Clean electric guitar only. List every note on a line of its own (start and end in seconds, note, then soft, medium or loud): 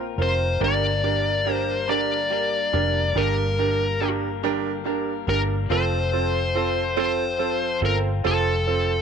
0.00 0.18 A#3 medium
0.00 0.18 C4 medium
0.00 0.18 F4 medium
0.00 0.17 A#4 medium
0.18 0.61 C4 soft
0.18 0.61 F4 medium
0.18 0.61 A#4 medium
0.61 1.04 G2 medium
0.61 1.04 D3 medium
0.61 1.04 G3 medium
0.61 1.04 A#3 medium
0.61 1.03 D4 medium
0.61 1.02 A#4 medium
1.03 1.44 G3 soft
1.03 1.45 A#3 medium
1.03 1.45 D4 medium
1.03 1.46 A#4 medium
1.45 1.87 G3 medium
1.45 1.87 A#3 medium
1.45 1.87 D4 medium
1.45 1.87 A#4 medium
1.88 2.32 G2 medium
1.88 2.32 D3 medium
1.88 2.29 G3 medium
1.88 2.30 A#3 medium
1.88 2.31 D4 medium
1.88 2.31 A#4 medium
2.30 2.73 G3 medium
2.30 2.74 A#3 medium
2.30 2.73 D4 medium
2.30 2.72 A#4 medium
2.73 3.16 G3 medium
2.73 3.16 A#3 soft
2.73 3.16 D4 medium
2.73 3.16 A#4 medium
3.16 3.59 G2 medium
3.16 3.59 D3 medium
3.16 3.59 G3 medium
3.16 3.59 A#3 medium
3.16 3.58 D4 loud
3.16 3.58 A#4 loud
3.59 3.99 G3 soft
3.59 4.01 A#3 medium
3.59 4.01 D4 medium
3.59 4.01 A#4 medium
4.01 4.43 G3 medium
4.01 4.43 A#3 medium
4.01 4.42 D4 medium
4.01 4.42 A#4 medium
4.43 4.87 G2 medium
4.43 4.87 D3 medium
4.43 4.83 G3 medium
4.43 4.84 A#3 medium
4.43 4.85 D4 medium
4.43 4.85 A#4 medium
4.84 5.28 G3 medium
4.84 5.27 A#3 medium
4.84 5.27 D4 medium
4.84 5.26 A#4 medium
5.27 5.69 G3 medium
5.27 5.69 A#3 soft
5.27 5.70 D4 medium
5.27 5.70 A#4 medium
5.69 6.12 F3 medium
5.69 6.13 C4 medium
5.69 6.12 F4 medium
5.69 6.10 A4 loud
6.12 6.55 C4 medium
6.12 6.56 F4 medium
6.12 6.55 A4 medium
6.55 6.97 F3 medium
6.55 6.97 C4 medium
6.55 6.96 F4 medium
6.55 6.96 A4 medium
6.97 7.37 F3 medium
6.97 7.38 C4 medium
6.97 7.39 F4 medium
6.97 7.39 A4 medium
7.38 7.82 F3 medium
7.38 7.82 C4 medium
7.38 7.82 F4 medium
7.38 7.83 A4 medium
7.83 8.24 C4 medium
7.83 8.24 F4 medium
8.24 8.67 F3 medium
8.24 8.68 C4 loud
8.24 8.67 F4 medium
8.24 8.65 A4 medium
8.67 9.02 C4 medium
8.67 9.02 F4 medium
8.67 9.02 A4 medium